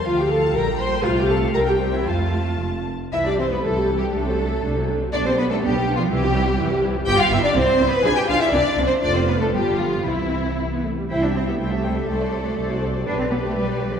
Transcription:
<<
  \new Staff \with { instrumentName = "Violin section" } { \time 2/4 \key f \major \tempo 4 = 122 f''4 g''4 | f''4 g''4 | a''4. r8 | \key c \major e''16 d''16 c''16 b'16 \tuplet 3/2 { a'4 g'8 } |
a'4. r8 | d''16 c''16 b'16 a'16 \tuplet 3/2 { g'4 f'8 } | g'4. r8 | g''16 f''16 e''16 d''16 \tuplet 3/2 { c''4 b'8 } |
gis''16 g''16 f''16 e''16 \tuplet 3/2 { d''4 c''8 } | d''16 c''16 b'16 a'16 g'8 f'8 | e'4. r8 | g''16 e''16 g''16 e''16 g''16 e''16 g''16 e''16 |
c''16 d''16 c''16 d''16 c''16 d''16 c''16 d''16 | b'16 d''16 b'16 d''16 b'16 d''16 b'16 d''16 | }
  \new Staff \with { instrumentName = "Violin section" } { \time 2/4 \key f \major f''16 g''16 a''8 bes''8 c'''8 | f''16 g''16 a''8 bes''16 g''16 c''16 e''16 | f''4 r4 | \key c \major e''16 d''16 c''16 b'16 \tuplet 3/2 { a'4 g'8 } |
a'4. r8 | d''16 c''16 b'16 a'16 \tuplet 3/2 { g'4 f'8 } | g'4. r8 | g''16 f''16 e''16 d''16 \tuplet 3/2 { c''4 b'8 } |
gis''16 g''16 f''16 e''16 \tuplet 3/2 { d''4 c''8 } | d''16 c''16 b'16 a'16 g'8 f'8 | e'4. r8 | r4 a'4~ |
a'2 | g'2 | }
  \new Staff \with { instrumentName = "Viola section" } { \time 2/4 \key f \major f'16 g'16 a'8 bes'8 c''8 | f'16 g'16 a'8 bes'16 g'16 c'16 e'16 | f'4 r4 | \key c \major <e e'>16 <g g'>16 <e e'>16 <g g'>16 <e e'>16 <g g'>16 <e e'>16 <g g'>16 |
<a d'>16 <fis c'>16 <a d'>16 <fis c'>16 <a d'>16 <fis c'>16 <a d'>16 <fis c'>16 | <b d'>16 <g b>16 <b d'>16 <g b>16 <b d'>16 <g b>16 <b d'>16 <g b>16 | <e e'>16 <g g'>16 <e e'>16 <g g'>16 <e e'>16 <g g'>16 <e e'>16 <g g'>16 | <b f'>8 <b f'>8 <c' e'>8 <c' e'>8 |
<d' f'>8 <d' f'>8 <c' e'>8 <c' e'>8 | <a f'>4 <b f'>4 | <c' e'>4 c'16 b16 a16 g16 | <e' c''>16 <g' e''>16 <e' c''>16 <g' e''>16 <e' c''>16 <g' e''>16 <e' c''>16 <g' e''>16 |
<a' d''>16 <fis' c''>16 <a' d''>16 <fis' c''>16 <a' d''>16 <fis' c''>16 <a' d''>16 <fis' c''>16 | <b' d''>16 <g' b'>16 <b' d''>16 <g' b'>16 <b' d''>16 <g' b'>16 <b' d''>16 <g' b'>16 | }
  \new Staff \with { instrumentName = "Cello section" } { \time 2/4 \key f \major f4 g4 | a4 g4 | a4. r8 | \key c \major e'16 d'16 c'16 b16 \tuplet 3/2 { a4 g8 } |
a4. r8 | d'16 c'16 b16 a16 \tuplet 3/2 { g4 f8 } | g4. r8 | g'16 f'16 e'16 d'16 \tuplet 3/2 { c'4 b8 } |
gis'16 g'16 f'16 e'16 \tuplet 3/2 { d'4 c'8 } | d'16 c'16 b16 a16 g8 f8 | e4. r8 | e'16 d'16 c'16 b16 \tuplet 3/2 { a4 g8 } |
a4. r8 | d'16 c'16 b16 a16 \tuplet 3/2 { g4 f8 } | }
  \new Staff \with { instrumentName = "Double bass section" } { \clef bass \time 2/4 \key f \major d,4 bes,,4 | c,4 c,4 | f,4 f,,4 | \key c \major c,4 c,4 |
c,4 c,4 | b,,4 b,,4 | c,4 c,4 | g,,8 g,,8 c,8 c,8 |
b,,8 b,,8 c,8 c,8 | f,,4 g,,4 | c,4. r8 | c,4 c,4 |
c,4 c,4 | b,,4 b,,4 | }
>>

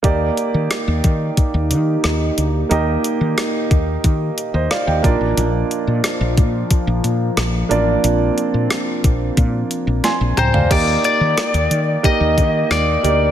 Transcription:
<<
  \new Staff \with { instrumentName = "Lead electric guitar" } { \time 4/4 \key ees \major \tempo 4 = 90 r1 | r1 | r1 | r2. r8 c''8 |
d''8 d''4. ees''4 d''4 | }
  \new Staff \with { instrumentName = "Grand piano" } { \time 4/4 \key ees \major << { r1 | r2 r8. <c'' ees''>16 <d'' f''>16 <ees'' g''>8 r16 | r1 | r2. <aes'' c'''>8 <g'' bes''>16 <d'' f''>16~ |
<d'' f''>16 r2. r8. | } \\ { <bes ees' g' d''>1 | <bes ees' g' ees''>2.~ <bes ees' g' ees''>8 <bes d' f' d''>8~ | <bes d' f' d''>2.~ <bes d' f' d''>8 <bes d' f' d''>8~ | <bes d' f' d''>2.~ <bes d' f' d''>8 r8 |
<bes ees' g' d''>4. r8 <bes ees' g' ees''>4~ <bes ees' g' ees''>16 r16 <bes ees' g' d''>8 | } >> }
  \new Staff \with { instrumentName = "Analog synth pad" } { \time 4/4 \key ees \major <bes ees' g'>1~ | <bes ees' g'>2.~ <bes ees' g'>8 f8~ | f2.~ f8 c'8~ | c'1 |
r1 | }
  \new Staff \with { instrumentName = "Fretless electric bass" } { \clef bass \time 4/4 \key ees \major ees,8 r16 ees16 r16 ees,16 ees8 r16 ees,16 ees8 ees,8 d,8 | ees,8 r16 ees16 r8 ees,8 ees8 r16 ees,16 r16 ees,16 bes,,16 a,,16 | bes,,8 r16 bes,16 r16 bes,,16 bes,8 r16 bes,,16 bes,8 bes,,8 a,,8 | bes,,8 r16 bes,16 r8 bes,,8 bes,8 r16 bes,,16 r16 bes,,16 des,16 d,16 |
ees,8 r16 ees16 r16 ees,16 ees8 r16 ees,16 ees8 ees,8 d,8 | }
  \new DrumStaff \with { instrumentName = "Drums" } \drummode { \time 4/4 <hh bd>8 hh8 <hh ss>8 <hh bd>8 <hh bd>8 hh8 <hh ss>8 hh8 | hh8 hh8 <hh ss>8 <hh bd>8 <hh bd>8 hh8 <hh ss>8 <hh bd>8 | hh8 hh8 <hh ss>8 <hh bd>8 <hh bd>8 hh8 <hh ss>8 hh8 | hh8 hh8 <hh ss>8 <hh bd>8 <hh bd>8 hh8 <hh sn>8 <hh toml>16 tomfh16 |
<cymc hh bd>8 hh8 <hh ss>16 hh16 hh8 <hh bd>8 <hh bd>8 <hh ss>8 hh8 | }
>>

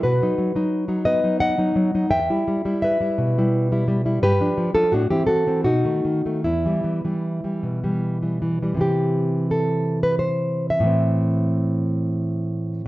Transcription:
\new Staff \with { instrumentName = "Nylon-string guitar" } { \clef bass \time 3/4 \key e \minor \tempo 4 = 85 << { <fis' b'>4. <b' dis''>8 <dis'' fis''>4 | <e'' g''>4 <b' e''>4. r8 | <g' b'>8. <f' a'>16 <d' fis'>16 <e' g'>16 <fis' a'>8 <dis' fis'>4 | <b e'>2 r4 |
g'4 a'8. b'16 c''8. e''16~ | e''2. | } \\ { b,16 <fis dis'>16 fis16 <fis dis'>8 <fis dis'>16 b16 <fis dis'>8 <fis dis'>16 fis16 <fis dis'>16 | e,16 <g e'>16 g16 <g e'>8 <g e'>16 b,16 <g e'>8 <g e'>16 g16 <g e'>16 | g,16 <f d'>16 f16 <f d'>16 a,16 <e c'>16 e16 <e c'>16 b,16 <dis a>16 dis16 <dis a>16 | e,16 <e g>16 e16 <e g>8 <e g>16 b,16 <e g>8 <e g>16 e16 <e g>16 |
<c e c'>2. | <a, e c'>2. | } >> }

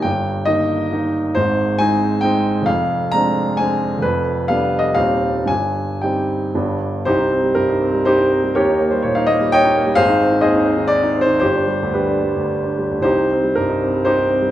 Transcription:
<<
  \new Staff \with { instrumentName = "Grand piano" } { \time 3/4 \key c \minor \tempo 4 = 123 g''4 ees''2 | c''4 aes''4 g''4 | f''4 bes''4 aes''4 | b'4 \tuplet 3/2 { f''4 ees''8 } f''4 |
aes''4 g''4. r8 | <ees' g' c''>4 bes'4 <ees' g' c''>4 | <g' bes' des''>8. c''16 des''16 f''16 ees''8 <des'' ees'' g''>4 | <aes' c'' f''>4 <aes' c'' ees''>4 \tuplet 3/2 { d''4 c''8 } |
<g' c''>4 <d' g' b'>4 r4 | <ees' g' c''>4 bes'4 <ees' g' c''>4 | }
  \new Staff \with { instrumentName = "Grand piano" } { \clef bass \time 3/4 \key c \minor <g,, g,>4 <ees bes ees'>4 <ees bes ees'>4 | <aes,, aes,>4 <aes c' ees'>4 <aes c' ees'>4 | <f,, f,>4 <aes c' d'>4 <aes c' d'>4 | <f,, f,>4 <g b d'>4 <ees,, ees, g c' ees'>4 |
<g,, g,>4 <g c' ees'>4 <g,, g, g b d'>4 | c,16 ees'16 c'16 g16 g,16 ees'16 c'16 g8 ees'16 c'16 g16 | ees,16 ees'16 bes16 g16 bes,16 ees'16 bes16 g8 ees'16 bes16 g16 | aes,,16 ees'16 c'16 ees16 ees,16 ees'16 c'16 ees8 ees'16 c'16 ees16 |
g,,16 d'16 g16 d,16 g16 d'16 g16 d,8 d'16 g16 d,16 | c,16 ees'16 c'16 g16 g,16 ees'16 c'16 g8 ees'16 c'16 g16 | }
>>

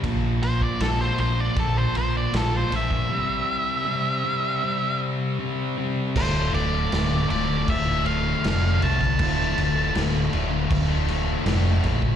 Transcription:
<<
  \new Staff \with { instrumentName = "Lead electric guitar" } { \time 4/4 \key d \minor \tempo 4 = 79 r8 c''16 d''16 a'16 c''16 c''16 d''16 a'16 c''16 c''16 d''16 a'16 c''16 e''8~ | e''2~ e''8 r4. | c''8 d''4 d''8 e''8 f''4 a''8~ | a''4 r2. | }
  \new Staff \with { instrumentName = "Distorted electric guitar" } { \clef bass \time 4/4 \key d \minor <bes, f bes>4 <bes, f bes>8 <bes, f bes>8 <bes, f bes>4 <bes, f bes>8 <bes, f bes>8 | <c g c'>4 <c g c'>8 <c g c'>8 <c g c'>4 <c g c'>8 <c g c'>8 | <d, d f'>8. <d a f'>16 <d, a, d a f'>8 <a, d a f'>8. <d a f'>16 <a, d a f'>16 <d a f'>16 <d, a, d a f'>8 <a, d a f'>8 | <d, a, d a f'>8. <d a f'>16 <d, a, d a f'>8 <a, d a f'>8. <d a f'>16 <a, d a f'>16 <d a f'>16 <d, a, d a f'>8 <a, d a f'>8 | }
  \new Staff \with { instrumentName = "Distorted electric guitar" } { \clef bass \time 4/4 \key d \minor <bes, f bes>4 <bes, f bes>8 <bes, f bes>8 <bes, f bes>4 <bes, f bes>8 <bes, f bes>8 | <c g c'>4 <c g c'>8 <c g c'>8 <c g c'>4 <c g c'>8 <c g c'>8 | r1 | r1 | }
  \new Staff \with { instrumentName = "Distorted electric guitar" } { \clef bass \time 4/4 \key d \minor r1 | r1 | <d, a, d a f'>4. <d, a, d a f'>2~ <d, a, d a f'>8 | <d, a, d a f'>4. <d, a, d a f'>2~ <d, a, d a f'>8 | }
  \new Staff \with { instrumentName = "Fingered electric bass" } { \clef bass \time 4/4 \key d \minor bes,,4 bes,,8 bes,,8 bes,,8 bes,,8 bes,,8 bes,,8 | r1 | d,,8 d,,8 d,,8 d,,8 d,,4 f,,8 c,8 | d,,8 d,,8 d,,8 d,,8 d,,4 f,,8 bes,,8 | }
  \new DrumStaff \with { instrumentName = "Drums" } \drummode { \time 4/4 <bd cymr>8 cymr16 bd16 <cymr sn>16 sn16 cymr8 <bd cymr>8 cymr8 <cymr sn>8 cymr16 bd16 | r4 r4 r4 r4 | <cymc bd>8 cymc8 <cymc sn>8 cymc8 <cymc bd>8 cymc8 <cymc sn>8 cymc16 <bd sn>16 | <cymc bd>8 cymc8 <cymc sn>8 cymc8 <cymc bd>8 <cymc sn>8 <cymc sn>8 cymc16 bd16 | }
>>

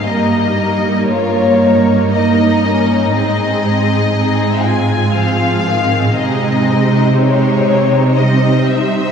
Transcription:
<<
  \new Staff \with { instrumentName = "Violin section" } { \time 3/4 \key aes \major \tempo 4 = 60 ees''4 des''4 ees''4 | ees''4. aes''8 f''4 | ees''4 des''4 ees''8 fes''8 | }
  \new Staff \with { instrumentName = "Violin section" } { \time 3/4 \key aes \major << { bes'8 bes'2~ bes'8 | aes'2. | aes'8 c''4. c''4 | } \\ { ees'4 f'8 ees'4.~ | ees'4 ees'8 f'4. | ees'4 ees'4 c'4 | } >> }
  \new Staff \with { instrumentName = "Viola section" } { \time 3/4 \key aes \major << { bes2 ees'8 des'8 | c'4 c'2~ | c'2 ees'4 | } \\ { g4 bes2 | aes4 aes4 f8 ees8 | aes2 g4 | } >> }
  \new Staff \with { instrumentName = "Cello section" } { \clef bass \time 3/4 \key aes \major g,2. | aes,2. | c2. | }
>>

